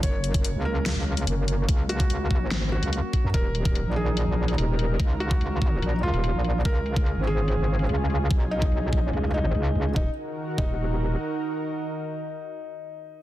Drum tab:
HH |x-xxx---x--xx-x-|x-xxx---x--xx-x-|x-xxx---x--xx-x-|x-xxx---x--xx-x-|
SD |--------o-------|--------o-------|----------------|----------------|
BD |o--o------------|o--o--o-------o-|o--o------------|o--o--o---------|

HH |x-xxx---x--xx-x-|x-xxx---x--xx-x-|----------------|----------------|
SD |----------------|----------------|----------------|----------------|
BD |o--o------------|o--o--o---------|o-----o---------|----------------|